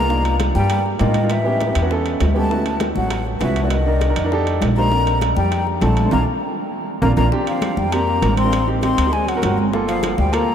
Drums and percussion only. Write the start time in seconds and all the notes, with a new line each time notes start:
0.10 high bongo, high conga
0.25 high bongo, high conga, high timbale
0.40 high bongo, high conga, high timbale, low timbale
0.55 high bongo, high conga
0.70 high bongo, high conga, high timbale
0.85 high bongo, high conga
0.99 high bongo, low bongo, high conga, high timbale, low timbale
1.14 high conga, high timbale
1.30 high bongo, high conga, high timbale
1.46 high bongo, high conga
1.61 high bongo, high conga, high timbale, low timbale
1.75 high timbale
1.91 high bongo, high conga
2.06 high bongo, high conga, high timbale
2.20 high bongo, low bongo, high conga, high timbale, low timbale
2.36 high bongo, high conga
2.51 high bongo, high conga
2.66 high bongo, high conga, high timbale
2.80 high bongo, high conga, high timbale, low timbale
2.96 high bongo, high conga
3.10 high bongo, high conga, high timbale
3.26 high bongo, high conga
3.41 high bongo, low bongo, high conga, high timbale, low timbale
3.56 high conga, high timbale
3.70 high bongo, high timbale
3.86 high bongo, high conga
4.01 high bongo, high conga, high timbale, low timbale
4.16 high timbale
4.32 high bongo, high conga
4.47 high bongo, high conga, high timbale
4.61 high bongo, low bongo, high conga, high timbale, low timbale
4.76 high bongo, high conga
4.92 high bongo
5.06 high bongo, high conga, high timbale
5.21 high bongo, high conga, high timbale, low timbale
5.37 high bongo, high conga
5.52 high bongo, high conga, high timbale
5.66 high bongo, high conga
5.81 high bongo, low bongo, high conga, high timbale, low timbale
5.96 high conga, high timbale
6.11 low bongo, low conga, high timbale
7.02 low bongo, low conga, high timbale
7.17 low bongo, low conga, high timbale
7.32 high bongo, high conga
7.47 high bongo, high conga, high timbale
7.62 high bongo, high conga, high timbale, low timbale
7.77 high bongo, high conga
7.92 high bongo, high conga, high timbale
8.07 high bongo, high conga
8.22 high bongo, low bongo, high conga, high timbale, low timbale
8.37 high conga, high timbale
8.53 high bongo, high timbale
8.68 high bongo, high conga
8.83 high bongo, high conga, high timbale, low timbale
8.98 high timbale
9.13 high bongo, high conga
9.27 high bongo, high conga, high timbale
9.42 high bongo, low bongo, high conga, high timbale, low timbale
9.57 high bongo, high conga
9.73 high bongo, high conga
9.88 high bongo, high conga, high timbale
10.03 high bongo, high conga, high timbale, low timbale
10.18 high bongo, high conga
10.33 high bongo, high conga, high timbale
10.48 high bongo, high conga